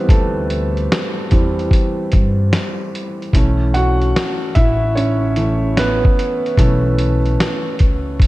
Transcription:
Already playing: felt piano E3 G3 B3 C4 D4 E4 B4 D5 E5 F#5
0.09 upright bass D2, felt piano A3 A4, kick, closed hi-hat
0.50 closed hi-hat
0.77 closed hi-hat
0.92 snare, closed hi-hat
1.31 upright bass E2, felt piano E3 G3 C4, kick, closed hi-hat
1.59 closed hi-hat
1.71 kick, closed hi-hat
2.12 upright bass G2, kick, closed hi-hat
2.53 snare, closed hi-hat
2.95 closed hi-hat
3.22 closed hi-hat
3.33 upright bass B1, felt piano E3 A3 C#4, kick, closed hi-hat
3.74 felt piano F#4 F#5, closed hi-hat
4.02 closed hi-hat
4.16 snare, closed hi-hat
4.55 upright bass A1, felt piano E4 E5, kick, closed hi-hat
4.95 felt piano C#4 C#5, closed hi-hat
5.36 felt piano E3 A3 C#4, closed hi-hat
5.77 felt piano B3 B4, snare, closed hi-hat
6.05 kick
6.19 closed hi-hat
6.46 closed hi-hat
6.58 upright bass B1, felt piano E3 A3 C#4 A4, kick, closed hi-hat
6.99 closed hi-hat
7.26 closed hi-hat
7.40 snare, closed hi-hat
7.79 upright bass C#2, kick, closed hi-hat
8.20 kick, closed hi-hat

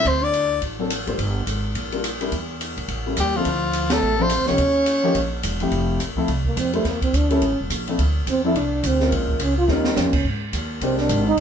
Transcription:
0.05 upright bass D2, trombone C4, soprano saxophone C5, kick, ride
0.21 trombone D4, soprano saxophone D5
0.33 hi-hat pedal, ride
0.62 upright bass A1, kick, ride
0.79 grand piano F#3 A#3 C4 D4 A4
0.90 hi-hat pedal, ride
1.07 upright bass G#1, grand piano G3 A#3 D4 F4 C5, ride
1.18 upright bass G1, kick, ride
1.47 upright bass G#1, hi-hat pedal, ride
1.75 upright bass A#1, kick, ride
1.92 grand piano G3 A#3 D4 F4 A#4, ride
2.04 hi-hat pedal, ride
2.21 grand piano G3 A#3 D4 E4 A#4, ride
2.31 upright bass E2, kick, ride
2.61 hi-hat pedal, ride
2.77 upright bass A#1, ride
2.88 upright bass A1, kick, ride
3.06 grand piano G3 A#3 C#4 E4 A4
3.17 upright bass D#2, trombone G3, soprano saxophone G4, hi-hat pedal, ride
3.35 trombone F3, grand piano F3 C4 D4 E4 A4, soprano saxophone F4
3.45 upright bass D2, kick, ride
3.73 hi-hat pedal, ride
3.90 trombone A3, soprano saxophone A4, snare, ride
4.01 upright bass A1
4.20 grand piano F3 C4 D4 E4 A4, trombone C4, soprano saxophone C5
4.30 hi-hat pedal, ride
4.39 upright bass D2
4.46 upright bass C2, grand piano F3 A#3 C#4 D#4 G4, trombone C#4, soprano saxophone C#5, snare
4.58 upright bass D#2, kick, ride
4.86 hi-hat pedal, ride
5.04 grand piano F3 A#3 C#4 D#4 G4
5.15 upright bass A#1, kick, ride
5.43 upright bass E1, hi-hat pedal, ride
5.60 grand piano F3 A3 C4 E4 G4, ride
5.71 upright bass F1, kick, ride
5.99 upright bass A1, kick, hi-hat pedal, ride
6.16 grand piano F3 A3 C4 E4 A4, kick
6.28 upright bass C2, kick, ride
6.45 trombone A#3, kick
6.56 upright bass F2, trombone C4, kick, hi-hat pedal, ride
6.73 grand piano G3 A#3 D4 E4 C5, trombone A3, ride
6.84 upright bass E2, trombone A#3, kick, snare, ride
7.02 trombone C4, kick, ride
7.13 upright bass D2, trombone D4, kick, hi-hat pedal, ride
7.30 grand piano G3 A#3 C#4 E4 A4, trombone C#4, ride
7.41 upright bass A1, kick, ride
7.51 upright bass G1
7.60 upright bass E1
7.70 upright bass A#1, kick, hi-hat pedal, ride
7.87 grand piano F3 C4 D4 E4 A4, ride
7.98 upright bass D2, kick, ride
8.26 upright bass E2, trombone C4, kick, hi-hat pedal, ride
8.45 grand piano F3 C4 D4 E4 A4, trombone E4
8.55 upright bass C2, trombone D4, kick, ride
8.83 upright bass D2, trombone C4, kick, hi-hat pedal, ride
9.00 grand piano G#3 A#3 C#4 F4 A#4, snare
9.11 upright bass A#1, kick, ride
9.28 kick
9.39 upright bass C#2, trombone C#4, hi-hat pedal, ride
9.58 trombone F4
9.68 upright bass D#2, grand piano G3 C#4 D#4 F4 A#4, trombone D#4, snare
9.84 snare
9.96 upright bass F2, trombone C#4, snare, hi-hat pedal
10.06 upright bass D#2
10.13 upright bass C#2, kick, crash
10.25 upright bass G#2, kick
10.53 upright bass D#2, kick, hi-hat pedal, ride
10.81 upright bass C2, grand piano G#3 C4 D4 G4 A#4, trombone C4, kick, ride
10.98 trombone D4, snare
11.09 upright bass G#1, kick, hi-hat pedal, ride
11.27 trombone D#4

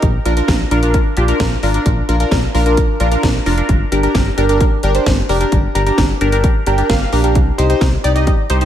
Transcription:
0.02 analog synth bass A#1, kick, closed hi-hat
0.25 analog synth bass A#1, synth keys D4 F4 A#4, closed hi-hat
0.37 synth keys D4 F4 A#4, closed hi-hat
0.48 analog synth bass A#1, kick, snare, closed hi-hat
0.71 analog synth bass A#1, synth keys D4 F4 A#4, closed hi-hat
0.83 synth keys D4 F4 A#4, closed hi-hat
0.94 kick, closed hi-hat
1.17 analog synth bass A#1, synth keys D4 F4 G4, closed hi-hat
1.28 synth keys D4 F4 A#4, closed hi-hat
1.40 analog synth bass A#1, kick, snare, closed hi-hat
1.63 analog synth bass G#1, synth keys D4 F4 A#4, open hi-hat
1.74 synth keys D4 F4 A#4, closed hi-hat
1.86 analog synth bass A#1, kick, closed hi-hat
2.09 analog synth bass A#1, synth keys D4 F4 A#4, closed hi-hat
2.20 synth keys D4 F4 A#4, closed hi-hat
2.31 analog synth bass A#1, kick, snare, closed hi-hat
2.54 analog synth bass A#1, synth keys D4 F4 A#4, open hi-hat
2.66 synth keys D4 F4 A#4, closed hi-hat
2.77 kick, closed hi-hat
3.00 analog synth bass A#1, synth keys D4 F4 A#4, closed hi-hat
3.12 synth keys D4 F4 A#4, closed hi-hat
3.23 analog synth bass A#1, kick, snare, closed hi-hat
3.46 analog synth bass F1, synth keys D4 F4 A#4, open hi-hat
3.58 synth keys D4 F4 A#4, closed hi-hat
3.69 analog synth bass G1, kick, closed hi-hat
3.92 analog synth bass G1, synth keys D4 G4 A#4, closed hi-hat
4.03 synth keys D4 G4 A#4, closed hi-hat
4.15 analog synth bass G1, kick, snare, closed hi-hat
4.37 analog synth bass G1, synth keys D4 G4 A#4, closed hi-hat
4.49 synth keys D4 G4 A#4, closed hi-hat
4.61 kick, closed hi-hat
4.83 analog synth bass G1, synth keys D4 G4 A#4, closed hi-hat
4.95 synth keys D4 G4 C5, closed hi-hat
5.06 analog synth bass G1, kick, snare, closed hi-hat
5.29 analog synth bass F1, synth keys D4 G4 A#4, open hi-hat
5.41 synth keys D4 G4 A#4, closed hi-hat
5.52 analog synth bass G1, kick, closed hi-hat
5.75 analog synth bass G1, synth keys D4 G4 A#4, closed hi-hat
5.87 synth keys D4 G4 A#4, closed hi-hat
5.98 analog synth bass G1, kick, snare, closed hi-hat
6.21 analog synth bass G1, synth keys D4 G4 A#4, closed hi-hat
6.32 synth keys D4 G4 A#4, closed hi-hat
6.44 kick, closed hi-hat
6.66 analog synth bass G1, synth keys D4 G4 A#4 G5, closed hi-hat
6.78 synth keys D4 G4 A#4, closed hi-hat
6.90 analog synth bass G1, synth keys F5, kick, snare, closed hi-hat
7.12 analog synth bass A#1, synth keys D4 G4 A#4, open hi-hat
7.24 synth keys D4 G4 A#4, closed hi-hat
7.35 analog synth bass C2, kick, closed hi-hat
7.58 analog synth bass C2, synth keys D#4 G4 C5, closed hi-hat
7.70 synth keys D#4 G4 C5, closed hi-hat
7.81 analog synth bass C2, kick, snare, closed hi-hat
8.04 analog synth bass C2, synth keys D#4 G4 D5, closed hi-hat
8.15 synth keys D#4 G4 D#5, closed hi-hat
8.27 kick, closed hi-hat
8.50 analog synth bass C2, synth keys D#4 G4 C5, closed hi-hat
8.61 synth keys D#4 G4 C5, closed hi-hat

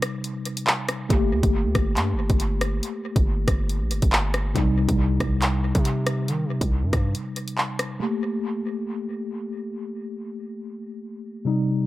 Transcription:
Already playing: tine electric piano C3 G3 D#4
0.02 cross-stick, closed hi-hat
0.24 closed hi-hat
0.45 closed hi-hat
0.57 closed hi-hat
0.67 clap
0.89 cross-stick, closed hi-hat
1.09 808-style bass G1, tine electric piano A3 A#3 G4, kick, closed hi-hat
1.32 808-style bass D2
1.43 808-style bass G1, kick, closed hi-hat
1.65 808-style bass D2
1.75 808-style bass G1, kick, cross-stick, closed hi-hat
1.97 808-style bass G2, clap, closed hi-hat
2.13 808-style bass G1
2.30 808-style bass G1, kick, closed hi-hat
2.40 closed hi-hat
2.61 cross-stick, closed hi-hat
2.83 closed hi-hat
3.16 808-style bass G1, kick, closed hi-hat
3.48 808-style bass G1, kick, cross-stick, closed hi-hat
3.69 closed hi-hat
3.81 808-style bass A#1
3.91 808-style bass G1, closed hi-hat
4.02 808-style bass G1, kick, closed hi-hat
4.13 clap
4.34 cross-stick, closed hi-hat
4.54 808-style bass C2, tine electric piano C3 G3 D#4, kick, closed hi-hat
4.89 808-style bass C2, kick, closed hi-hat
5.20 808-style bass C2, kick, cross-stick, closed hi-hat
5.42 clap, closed hi-hat
5.75 808-style bass C3, kick, closed hi-hat
5.85 closed hi-hat
6.07 cross-stick, closed hi-hat
6.28 808-style bass D#3, closed hi-hat
6.45 808-style bass C3
6.61 808-style bass C2, kick, closed hi-hat
6.83 808-style bass G2
6.93 808-style bass G2, kick, cross-stick, closed hi-hat
7.15 closed hi-hat
7.36 closed hi-hat
7.48 closed hi-hat
7.58 clap
7.79 cross-stick, closed hi-hat
8.00 tine electric piano A3 A#3 G4
11.45 tine electric piano C3 G3 D#4

